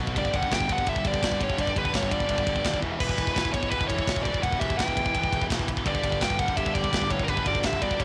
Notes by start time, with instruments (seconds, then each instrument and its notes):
Already playing: picked electric bass B1, distorted electric guitar B2 F#3 B3
0.00 distorted electric guitar F#3 B3
0.07 distorted electric guitar B2 F#3, kick
0.15 picked electric bass G1, distorted electric guitar G2 D3 G3, lead electric guitar D5, kick, ride
0.22 distorted electric guitar G2 D3, kick
0.31 picked electric bass G1, distorted electric guitar G2 D3 G3, kick, ride
0.36 distorted electric guitar G2 D3, lead electric guitar F#5
0.43 kick
0.47 distorted electric guitar G2 D3
0.51 picked electric bass G1, distorted electric guitar G2 G3, lead electric guitar G5, kick, snare, ride
0.56 distorted electric guitar D3
0.60 distorted electric guitar G2 D3, kick
0.69 distorted electric guitar G2 D3 G3, lead electric guitar F#5, kick, ride
0.78 distorted electric guitar G2 D3, kick
0.85 picked electric bass G1, distorted electric guitar G2 D3 G3, lead electric guitar E5, kick, ride
0.93 distorted electric guitar G2 D3, kick
1.01 picked electric bass G1, distorted electric guitar G2 D3, ride
1.05 distorted electric guitar G2 G3, lead electric guitar D5, kick
1.09 distorted electric guitar G2 D3
1.14 distorted electric guitar G2, kick
1.18 distorted electric guitar D3
1.23 picked electric bass G1, distorted electric guitar G2 D3 G3, kick, snare, ride
1.32 distorted electric guitar G2 D3, kick
1.40 distorted electric guitar G2 D3 G3, lead electric guitar C#5, kick, ride
1.48 distorted electric guitar G2 D3, kick
1.56 picked electric bass G1, distorted electric guitar G2 D3 G3, kick, ride
1.61 distorted electric guitar G2, lead electric guitar D5
1.66 distorted electric guitar D3, kick
1.73 picked electric bass G1, distorted electric guitar G2 D3 G3, kick, ride
1.79 distorted electric guitar G2 D3, lead electric guitar B4
1.85 distorted electric guitar G2 D3, kick
1.94 picked electric bass G1, distorted electric guitar G2 D3 G3, lead electric guitar C#5, kick, snare, ride
2.03 distorted electric guitar G2 D3, kick
2.11 distorted electric guitar G2 D3 G3, lead electric guitar D5, kick, ride
2.19 distorted electric guitar G2 D3, kick
2.28 picked electric bass G1, distorted electric guitar G2 D3 G3, kick, ride
2.35 distorted electric guitar G2 D3, kick
2.42 distorted electric guitar G2 D3
2.47 picked electric bass G1, distorted electric guitar G2 G3, kick, ride
2.51 distorted electric guitar D3
2.56 distorted electric guitar G2 D3, kick
2.64 picked electric bass D#2, distorted electric guitar G2 D3 G3, kick, snare, ride
2.74 distorted electric guitar G2 D3, kick
2.81 picked electric bass E1, distorted electric guitar E2 B2 E3 G3, kick
2.89 distorted electric guitar E3 G3
2.98 picked electric bass E1, distorted electric guitar E2 B2 E3 G3, lead electric guitar E4 B4, kick, crash
3.06 distorted electric guitar E3 G3, kick
3.14 distorted electric guitar E2 E3 G3
3.18 picked electric bass E1, distorted electric guitar B2, kick, ride
3.22 distorted electric guitar E3 G3
3.27 distorted electric guitar E3 G3, kick
3.34 picked electric bass E1, distorted electric guitar E2 B2 E3, lead electric guitar E4 B4, kick, snare, ride
3.38 distorted electric guitar G3
3.44 distorted electric guitar E3 G3, kick
3.53 distorted electric guitar E2 B2 E3 G3, lead electric guitar E4 C#5, kick, ride
3.61 distorted electric guitar E3 G3, kick
3.68 picked electric bass E1, distorted electric guitar E2 E3 G3, lead electric guitar E4 B4, kick, ride
3.72 distorted electric guitar B2 E3
3.77 distorted electric guitar G3, kick
3.84 distorted electric guitar E3 G3, lead electric guitar C#5
3.89 picked electric bass E1, distorted electric guitar E2 B2 E3 G3, lead electric guitar E4, kick, ride
3.99 distorted electric guitar E3 G3, kick
4.07 picked electric bass E1, distorted electric guitar E2 B2 E3 G3, kick, snare, ride
4.15 distorted electric guitar E3 G3, kick
4.23 distorted electric guitar E2 B2 E3 G3, lead electric guitar F#4 D5, kick, ride
4.32 distorted electric guitar E3 G3, kick
4.39 picked electric bass E1, distorted electric guitar E2 B2 E3 G3, lead electric guitar B4 F#5
4.43 distorted electric guitar E3, kick, ride
4.48 distorted electric guitar G3
4.52 distorted electric guitar E3 G3, kick
4.59 picked electric bass E1, distorted electric guitar E2 B2 E3, lead electric guitar G4 E5, kick, ride
4.63 distorted electric guitar G3
4.69 distorted electric guitar E3 G3, kick
4.76 picked electric bass E1, distorted electric guitar E2 B2 E3 G3, lead electric guitar B4 G5, kick, ride
4.80 snare
4.85 distorted electric guitar E3 G3, kick
4.91 distorted electric guitar E3 G3
4.97 distorted electric guitar E2 B2 E3 G3, kick, ride
5.06 distorted electric guitar E3 G3, kick
5.14 picked electric bass E1, distorted electric guitar E2 B2 E3 G3, kick, ride
5.22 distorted electric guitar E3 G3, kick
5.29 picked electric bass E1, distorted electric guitar E2 B2 E3 G3, kick, ride
5.34 distorted electric guitar E3 G3
5.38 distorted electric guitar E3, kick
5.45 distorted electric guitar E3 G3
5.50 picked electric bass E1, distorted electric guitar E2 B2 E3 G3, kick, snare, ride
5.59 distorted electric guitar E3 G3, kick
5.68 distorted electric guitar E2 B2 E3, kick, ride
5.77 kick
5.84 picked electric bass G1, distorted electric guitar G2 D3 G3, lead electric guitar G4 D5, kick, ride
5.93 distorted electric guitar G2 D3, kick
6.00 picked electric bass G1, distorted electric guitar G2 D3, kick, ride
6.04 distorted electric guitar G3
6.09 distorted electric guitar G2 D3, kick
6.17 distorted electric guitar G2 D3
6.21 picked electric bass G1, distorted electric guitar G2 D3 G3, lead electric guitar B4 G5, kick, snare, ride
6.30 distorted electric guitar G2 D3, kick
6.39 distorted electric guitar G2 D3 G3, lead electric guitar A#4 F#5, kick, ride
6.47 distorted electric guitar G2 D3, kick
6.56 picked electric bass G1, distorted electric guitar G2 D3 G3, lead electric guitar G4 E5, kick, ride
6.62 distorted electric guitar G2 D3, kick
6.71 picked electric bass G1, distorted electric guitar G2 D3 G3, lead electric guitar G4 D5, kick, ride
6.78 distorted electric guitar G2 D3
6.84 distorted electric guitar G2 D3, kick
6.92 picked electric bass G1, distorted electric guitar G2 D3 G3, kick, snare, ride
7.02 distorted electric guitar G2 D3, kick
7.09 distorted electric guitar G2 D3 G3, lead electric guitar E4 C#5, kick, ride
7.17 distorted electric guitar G2 D3, kick
7.23 distorted electric guitar G2, lead electric guitar C#4 A#4
7.27 picked electric bass G1, distorted electric guitar G2 D3 G3, lead electric guitar D4 B4, kick, ride
7.34 distorted electric guitar G2 D3, kick
7.41 distorted electric guitar G2 D3
7.46 picked electric bass G1, distorted electric guitar G2 G3, lead electric guitar F#4 D5, kick, ride
7.51 distorted electric guitar D3
7.55 distorted electric guitar G2 D3, kick
7.63 picked electric bass G1, distorted electric guitar G2 D3 G3, lead electric guitar G4 E5, kick, snare, ride
7.72 distorted electric guitar G2 D3, kick
7.79 distorted electric guitar G2 D3 G3, lead electric guitar F#4 D5, kick, ride
7.87 distorted electric guitar G2 D3
7.91 distorted electric guitar G2, kick
7.96 distorted electric guitar G2 D3, lead electric guitar G4
8.00 picked electric bass G1, distorted electric guitar D3 G3, lead electric guitar C#5, kick, ride